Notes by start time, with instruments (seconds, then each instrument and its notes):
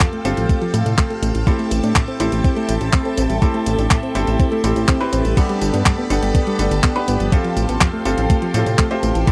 Already playing: grand piano C4 F4 G4 A4, string machine A4 F5 G5 A5
0.00 synth arpeggio sound F2, kick, clap, closed hi-hat, tambourine
0.13 synth arpeggio sound A3, closed hi-hat
0.25 analog synth bass G1, grand piano C4 F4 G4 A4, synth arpeggio sound C4, closed hi-hat, tambourine
0.37 analog synth bass A1, synth arpeggio sound F3, closed hi-hat, tambourine
0.49 synth arpeggio sound A3, kick, closed hi-hat, tambourine
0.62 synth arpeggio sound F3, closed hi-hat
0.74 analog synth bass A2, synth arpeggio sound F3, closed hi-hat, tambourine
0.86 analog synth bass A2, synth arpeggio sound C3, closed hi-hat, tambourine
0.98 synth arpeggio sound A3, kick, clap, closed hi-hat, tambourine
1.10 synth arpeggio sound A3, closed hi-hat
1.22 analog synth bass A1, synth arpeggio sound A3, closed hi-hat, tambourine
1.35 analog synth bass A1, synth arpeggio sound E3, closed hi-hat, tambourine
1.47 synth arpeggio sound A3, grand piano C4 E4 G4 A4, string machine A4 E5, kick, closed hi-hat, tambourine
1.59 synth arpeggio sound A3, closed hi-hat
1.71 analog synth bass A1, synth arpeggio sound A3, closed hi-hat, tambourine
1.83 analog synth bass A2, synth arpeggio sound D4, closed hi-hat, tambourine
1.96 synth arpeggio sound A2, kick, clap, closed hi-hat, tambourine
2.08 synth arpeggio sound C4, closed hi-hat
2.20 analog synth bass A1, grand piano C4 E4 G4 A4, synth arpeggio sound E4, closed hi-hat, tambourine
2.32 analog synth bass A1, synth arpeggio sound A3, closed hi-hat, tambourine
2.44 synth arpeggio sound C4, kick, closed hi-hat, tambourine
2.56 synth arpeggio sound A3, closed hi-hat
2.69 analog synth bass A1, synth arpeggio sound A3, closed hi-hat, tambourine
2.81 analog synth bass A1, synth arpeggio sound E3, closed hi-hat, tambourine
2.93 synth arpeggio sound C4, kick, clap, closed hi-hat, tambourine
3.05 synth arpeggio sound C4, closed hi-hat
3.17 analog synth bass A1, synth arpeggio sound C4, closed hi-hat, tambourine
3.30 analog synth bass A1, synth arpeggio sound G3, closed hi-hat, tambourine
3.42 synth arpeggio sound A3, grand piano C4 E4 G4 A4, kick, closed hi-hat, tambourine
3.54 synth arpeggio sound A3, closed hi-hat
3.66 analog synth bass A1, synth arpeggio sound A3, closed hi-hat, tambourine
3.79 analog synth bass A1, synth arpeggio sound D4, closed hi-hat, tambourine
3.91 synth arpeggio sound A2, kick, clap, closed hi-hat, tambourine
4.03 synth arpeggio sound C4, closed hi-hat
4.15 analog synth bass G1, grand piano C4 E4 G4 A4, synth arpeggio sound E4, closed hi-hat, tambourine
4.27 analog synth bass A1, synth arpeggio sound A3, closed hi-hat, tambourine
4.39 synth arpeggio sound C4, kick, closed hi-hat, tambourine
4.52 synth arpeggio sound A3, closed hi-hat
4.64 analog synth bass A1, synth arpeggio sound A3, grand piano C4 E4 G4 A4, closed hi-hat, tambourine
4.76 analog synth bass A1, synth arpeggio sound E3, closed hi-hat, tambourine
4.88 synth arpeggio sound C4, kick, clap, closed hi-hat, tambourine
5.00 grand piano C4 E4 G4 B4, synth arpeggio sound C4, closed hi-hat
5.13 analog synth bass A1, synth arpeggio sound C4, closed hi-hat, tambourine
5.25 analog synth bass A1, synth arpeggio sound G3, closed hi-hat, tambourine
5.37 synth arpeggio sound G3, grand piano B3 D4 G4 A4, string machine A4 D5 G5 B5, kick, closed hi-hat, crash, tambourine
5.49 synth arpeggio sound G3, closed hi-hat
5.62 analog synth bass G1, synth arpeggio sound G3, closed hi-hat, tambourine
5.74 analog synth bass G2, synth arpeggio sound B3, closed hi-hat, tambourine
5.86 synth arpeggio sound G2, kick, clap, closed hi-hat, tambourine
5.98 synth arpeggio sound B3
6.10 analog synth bass G1, grand piano B3 D4 G4 A4, synth arpeggio sound D4, closed hi-hat, tambourine
6.22 analog synth bass G1, synth arpeggio sound G3, closed hi-hat, tambourine
6.35 synth arpeggio sound B3, kick, closed hi-hat, tambourine
6.47 synth arpeggio sound G3, closed hi-hat
6.59 analog synth bass G1, synth arpeggio sound G3, grand piano B3 D4 G4 A4, closed hi-hat, tambourine
6.71 analog synth bass G1, synth arpeggio sound D3, closed hi-hat, tambourine
6.83 synth arpeggio sound B3, kick, clap, closed hi-hat, tambourine
6.96 synth arpeggio sound B3, grand piano B3 D4 G4 B4, closed hi-hat
7.08 analog synth bass G1, synth arpeggio sound B3, closed hi-hat, tambourine
7.20 analog synth bass G1, synth arpeggio sound F3, closed hi-hat, tambourine
7.32 synth arpeggio sound F3, grand piano C4 F4 G4 A4, string machine A4 F5 G5 C6, kick, closed hi-hat, tambourine
7.44 synth arpeggio sound F3, closed hi-hat
7.57 analog synth bass A1, synth arpeggio sound F3, closed hi-hat, tambourine
7.69 analog synth bass A1, synth arpeggio sound B3, closed hi-hat, tambourine
7.81 synth arpeggio sound F2, kick, clap, closed hi-hat, tambourine
7.93 synth arpeggio sound A3
8.05 analog synth bass G1, grand piano C4 F4 G4 A4, synth arpeggio sound C4, closed hi-hat, tambourine
8.18 analog synth bass A1, synth arpeggio sound F3, closed hi-hat, tambourine
8.30 synth arpeggio sound A3, kick, closed hi-hat, tambourine
8.42 synth arpeggio sound F3, closed hi-hat
8.54 analog synth bass A2, synth arpeggio sound F3, grand piano C4 F4 G4 A4, closed hi-hat, tambourine
8.66 analog synth bass A2, synth arpeggio sound C3, closed hi-hat, tambourine
8.79 synth arpeggio sound A3, kick, clap, closed hi-hat, tambourine
8.91 synth arpeggio sound A3, grand piano C4 F4 G4 C5, closed hi-hat
9.03 analog synth bass A1, synth arpeggio sound A3, closed hi-hat, tambourine
9.15 analog synth bass A1, synth arpeggio sound E3, closed hi-hat, tambourine
9.27 synth arpeggio sound A3, grand piano C4 E4 G4 A4, string machine E5 A5, kick, closed hi-hat, tambourine